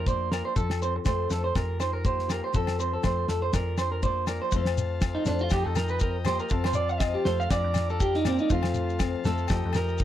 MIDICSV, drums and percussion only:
0, 0, Header, 1, 3, 480
1, 0, Start_track
1, 0, Tempo, 497100
1, 542, Time_signature, 4, 2, 24, 8
1, 9696, End_track
2, 0, Start_track
2, 0, Title_t, "Shekere"
2, 71, Note_on_c, 9, 82, 80
2, 168, Note_off_c, 9, 82, 0
2, 313, Note_on_c, 9, 82, 57
2, 409, Note_off_c, 9, 82, 0
2, 544, Note_on_c, 9, 82, 84
2, 640, Note_off_c, 9, 82, 0
2, 794, Note_on_c, 9, 82, 60
2, 890, Note_off_c, 9, 82, 0
2, 1016, Note_on_c, 9, 82, 85
2, 1112, Note_off_c, 9, 82, 0
2, 1258, Note_on_c, 9, 82, 63
2, 1355, Note_off_c, 9, 82, 0
2, 1502, Note_on_c, 9, 82, 85
2, 1599, Note_off_c, 9, 82, 0
2, 1742, Note_on_c, 9, 82, 65
2, 1839, Note_off_c, 9, 82, 0
2, 1981, Note_on_c, 9, 82, 81
2, 2077, Note_off_c, 9, 82, 0
2, 2218, Note_on_c, 9, 82, 67
2, 2315, Note_off_c, 9, 82, 0
2, 2451, Note_on_c, 9, 82, 87
2, 2547, Note_off_c, 9, 82, 0
2, 2701, Note_on_c, 9, 82, 64
2, 2797, Note_off_c, 9, 82, 0
2, 2931, Note_on_c, 9, 82, 79
2, 3027, Note_off_c, 9, 82, 0
2, 3179, Note_on_c, 9, 82, 62
2, 3276, Note_off_c, 9, 82, 0
2, 3412, Note_on_c, 9, 82, 92
2, 3509, Note_off_c, 9, 82, 0
2, 3647, Note_on_c, 9, 82, 64
2, 3744, Note_off_c, 9, 82, 0
2, 3888, Note_on_c, 9, 82, 76
2, 3984, Note_off_c, 9, 82, 0
2, 4124, Note_on_c, 9, 82, 66
2, 4221, Note_off_c, 9, 82, 0
2, 4360, Note_on_c, 9, 82, 75
2, 4457, Note_off_c, 9, 82, 0
2, 4611, Note_on_c, 9, 82, 99
2, 4708, Note_off_c, 9, 82, 0
2, 4838, Note_on_c, 9, 82, 68
2, 4934, Note_off_c, 9, 82, 0
2, 5073, Note_on_c, 9, 82, 90
2, 5170, Note_off_c, 9, 82, 0
2, 5202, Note_on_c, 9, 82, 25
2, 5298, Note_off_c, 9, 82, 0
2, 5308, Note_on_c, 9, 82, 74
2, 5405, Note_off_c, 9, 82, 0
2, 5557, Note_on_c, 9, 82, 86
2, 5654, Note_off_c, 9, 82, 0
2, 5679, Note_on_c, 9, 82, 27
2, 5776, Note_off_c, 9, 82, 0
2, 5789, Note_on_c, 9, 82, 68
2, 5885, Note_off_c, 9, 82, 0
2, 6034, Note_on_c, 9, 82, 77
2, 6130, Note_off_c, 9, 82, 0
2, 6173, Note_on_c, 9, 82, 25
2, 6268, Note_off_c, 9, 82, 0
2, 6268, Note_on_c, 9, 82, 67
2, 6364, Note_off_c, 9, 82, 0
2, 6500, Note_on_c, 9, 82, 82
2, 6596, Note_off_c, 9, 82, 0
2, 6651, Note_on_c, 9, 82, 27
2, 6747, Note_off_c, 9, 82, 0
2, 6764, Note_on_c, 9, 82, 65
2, 6861, Note_off_c, 9, 82, 0
2, 7149, Note_on_c, 9, 82, 25
2, 7246, Note_off_c, 9, 82, 0
2, 7253, Note_on_c, 9, 82, 64
2, 7350, Note_off_c, 9, 82, 0
2, 7481, Note_on_c, 9, 82, 80
2, 7577, Note_off_c, 9, 82, 0
2, 7625, Note_on_c, 9, 82, 22
2, 7722, Note_off_c, 9, 82, 0
2, 7728, Note_on_c, 9, 82, 60
2, 7824, Note_off_c, 9, 82, 0
2, 7968, Note_on_c, 9, 82, 74
2, 8064, Note_off_c, 9, 82, 0
2, 8095, Note_on_c, 9, 82, 23
2, 8192, Note_off_c, 9, 82, 0
2, 8205, Note_on_c, 9, 82, 59
2, 8302, Note_off_c, 9, 82, 0
2, 8441, Note_on_c, 9, 82, 70
2, 8538, Note_off_c, 9, 82, 0
2, 8587, Note_on_c, 9, 82, 23
2, 8684, Note_off_c, 9, 82, 0
2, 8685, Note_on_c, 9, 82, 61
2, 8781, Note_off_c, 9, 82, 0
2, 8928, Note_on_c, 9, 82, 71
2, 9024, Note_off_c, 9, 82, 0
2, 9057, Note_on_c, 9, 82, 24
2, 9153, Note_off_c, 9, 82, 0
2, 9157, Note_on_c, 9, 82, 62
2, 9253, Note_off_c, 9, 82, 0
2, 9406, Note_on_c, 9, 82, 79
2, 9503, Note_off_c, 9, 82, 0
2, 9540, Note_on_c, 9, 82, 20
2, 9637, Note_off_c, 9, 82, 0
2, 9638, Note_on_c, 9, 82, 57
2, 9696, Note_off_c, 9, 82, 0
2, 9696, End_track
3, 0, Start_track
3, 0, Title_t, "Drums"
3, 62, Note_on_c, 9, 36, 81
3, 159, Note_off_c, 9, 36, 0
3, 305, Note_on_c, 9, 38, 59
3, 323, Note_on_c, 9, 68, 59
3, 402, Note_off_c, 9, 38, 0
3, 419, Note_off_c, 9, 68, 0
3, 542, Note_on_c, 9, 36, 80
3, 639, Note_off_c, 9, 36, 0
3, 676, Note_on_c, 9, 38, 60
3, 686, Note_on_c, 9, 68, 59
3, 772, Note_off_c, 9, 38, 0
3, 782, Note_off_c, 9, 68, 0
3, 1018, Note_on_c, 9, 38, 61
3, 1021, Note_on_c, 9, 36, 78
3, 1021, Note_on_c, 9, 68, 59
3, 1114, Note_off_c, 9, 38, 0
3, 1117, Note_off_c, 9, 36, 0
3, 1118, Note_off_c, 9, 68, 0
3, 1262, Note_on_c, 9, 38, 63
3, 1359, Note_off_c, 9, 38, 0
3, 1501, Note_on_c, 9, 36, 85
3, 1503, Note_on_c, 9, 68, 56
3, 1505, Note_on_c, 9, 38, 65
3, 1597, Note_off_c, 9, 36, 0
3, 1599, Note_off_c, 9, 68, 0
3, 1602, Note_off_c, 9, 38, 0
3, 1737, Note_on_c, 9, 68, 54
3, 1738, Note_on_c, 9, 38, 60
3, 1833, Note_off_c, 9, 68, 0
3, 1835, Note_off_c, 9, 38, 0
3, 1976, Note_on_c, 9, 36, 86
3, 2073, Note_off_c, 9, 36, 0
3, 2113, Note_on_c, 9, 38, 25
3, 2209, Note_off_c, 9, 38, 0
3, 2217, Note_on_c, 9, 38, 61
3, 2219, Note_on_c, 9, 68, 56
3, 2313, Note_off_c, 9, 38, 0
3, 2316, Note_off_c, 9, 68, 0
3, 2457, Note_on_c, 9, 36, 82
3, 2554, Note_off_c, 9, 36, 0
3, 2580, Note_on_c, 9, 68, 58
3, 2584, Note_on_c, 9, 38, 60
3, 2677, Note_off_c, 9, 68, 0
3, 2681, Note_off_c, 9, 38, 0
3, 2930, Note_on_c, 9, 68, 57
3, 2932, Note_on_c, 9, 38, 64
3, 2936, Note_on_c, 9, 36, 77
3, 3026, Note_off_c, 9, 68, 0
3, 3029, Note_off_c, 9, 38, 0
3, 3032, Note_off_c, 9, 36, 0
3, 3171, Note_on_c, 9, 38, 64
3, 3268, Note_off_c, 9, 38, 0
3, 3410, Note_on_c, 9, 38, 62
3, 3414, Note_on_c, 9, 36, 83
3, 3415, Note_on_c, 9, 68, 56
3, 3506, Note_off_c, 9, 38, 0
3, 3511, Note_off_c, 9, 36, 0
3, 3511, Note_off_c, 9, 68, 0
3, 3646, Note_on_c, 9, 38, 61
3, 3648, Note_on_c, 9, 68, 54
3, 3743, Note_off_c, 9, 38, 0
3, 3744, Note_off_c, 9, 68, 0
3, 3891, Note_on_c, 9, 36, 83
3, 3987, Note_off_c, 9, 36, 0
3, 4123, Note_on_c, 9, 38, 54
3, 4124, Note_on_c, 9, 68, 58
3, 4220, Note_off_c, 9, 38, 0
3, 4220, Note_off_c, 9, 68, 0
3, 4367, Note_on_c, 9, 36, 86
3, 4464, Note_off_c, 9, 36, 0
3, 4494, Note_on_c, 9, 38, 62
3, 4510, Note_on_c, 9, 68, 60
3, 4590, Note_off_c, 9, 38, 0
3, 4606, Note_off_c, 9, 68, 0
3, 4840, Note_on_c, 9, 38, 63
3, 4844, Note_on_c, 9, 36, 87
3, 4845, Note_on_c, 9, 68, 58
3, 4937, Note_off_c, 9, 38, 0
3, 4941, Note_off_c, 9, 36, 0
3, 4942, Note_off_c, 9, 68, 0
3, 5077, Note_on_c, 9, 38, 67
3, 5173, Note_off_c, 9, 38, 0
3, 5318, Note_on_c, 9, 68, 59
3, 5325, Note_on_c, 9, 36, 86
3, 5325, Note_on_c, 9, 38, 71
3, 5414, Note_off_c, 9, 68, 0
3, 5422, Note_off_c, 9, 36, 0
3, 5422, Note_off_c, 9, 38, 0
3, 5557, Note_on_c, 9, 68, 59
3, 5572, Note_on_c, 9, 38, 64
3, 5653, Note_off_c, 9, 68, 0
3, 5668, Note_off_c, 9, 38, 0
3, 5806, Note_on_c, 9, 36, 96
3, 5902, Note_off_c, 9, 36, 0
3, 6031, Note_on_c, 9, 68, 63
3, 6047, Note_on_c, 9, 38, 65
3, 6128, Note_off_c, 9, 68, 0
3, 6143, Note_off_c, 9, 38, 0
3, 6285, Note_on_c, 9, 36, 87
3, 6382, Note_off_c, 9, 36, 0
3, 6411, Note_on_c, 9, 68, 61
3, 6420, Note_on_c, 9, 38, 61
3, 6508, Note_off_c, 9, 68, 0
3, 6517, Note_off_c, 9, 38, 0
3, 6760, Note_on_c, 9, 38, 68
3, 6763, Note_on_c, 9, 36, 86
3, 6765, Note_on_c, 9, 68, 63
3, 6857, Note_off_c, 9, 38, 0
3, 6859, Note_off_c, 9, 36, 0
3, 6861, Note_off_c, 9, 68, 0
3, 7002, Note_on_c, 9, 38, 73
3, 7098, Note_off_c, 9, 38, 0
3, 7247, Note_on_c, 9, 36, 94
3, 7247, Note_on_c, 9, 38, 69
3, 7255, Note_on_c, 9, 68, 59
3, 7343, Note_off_c, 9, 36, 0
3, 7344, Note_off_c, 9, 38, 0
3, 7352, Note_off_c, 9, 68, 0
3, 7474, Note_on_c, 9, 68, 59
3, 7491, Note_on_c, 9, 38, 62
3, 7570, Note_off_c, 9, 68, 0
3, 7588, Note_off_c, 9, 38, 0
3, 7728, Note_on_c, 9, 36, 90
3, 7825, Note_off_c, 9, 36, 0
3, 7860, Note_on_c, 9, 38, 26
3, 7956, Note_off_c, 9, 38, 0
3, 7966, Note_on_c, 9, 38, 65
3, 7966, Note_on_c, 9, 68, 63
3, 8063, Note_off_c, 9, 38, 0
3, 8063, Note_off_c, 9, 68, 0
3, 8209, Note_on_c, 9, 36, 91
3, 8305, Note_off_c, 9, 36, 0
3, 8330, Note_on_c, 9, 68, 64
3, 8343, Note_on_c, 9, 38, 70
3, 8426, Note_off_c, 9, 68, 0
3, 8440, Note_off_c, 9, 38, 0
3, 8683, Note_on_c, 9, 68, 66
3, 8689, Note_on_c, 9, 38, 73
3, 8691, Note_on_c, 9, 36, 89
3, 8780, Note_off_c, 9, 68, 0
3, 8786, Note_off_c, 9, 38, 0
3, 8787, Note_off_c, 9, 36, 0
3, 8936, Note_on_c, 9, 38, 72
3, 9033, Note_off_c, 9, 38, 0
3, 9153, Note_on_c, 9, 68, 66
3, 9173, Note_on_c, 9, 36, 92
3, 9176, Note_on_c, 9, 38, 72
3, 9250, Note_off_c, 9, 68, 0
3, 9269, Note_off_c, 9, 36, 0
3, 9272, Note_off_c, 9, 38, 0
3, 9392, Note_on_c, 9, 68, 62
3, 9414, Note_on_c, 9, 38, 68
3, 9489, Note_off_c, 9, 68, 0
3, 9511, Note_off_c, 9, 38, 0
3, 9655, Note_on_c, 9, 36, 91
3, 9696, Note_off_c, 9, 36, 0
3, 9696, End_track
0, 0, End_of_file